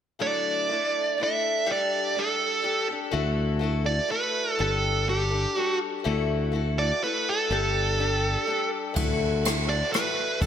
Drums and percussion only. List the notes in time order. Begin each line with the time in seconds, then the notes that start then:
8.96 kick, ride
9.45 cross-stick, ride
9.94 cross-stick, ride
10.42 kick, ride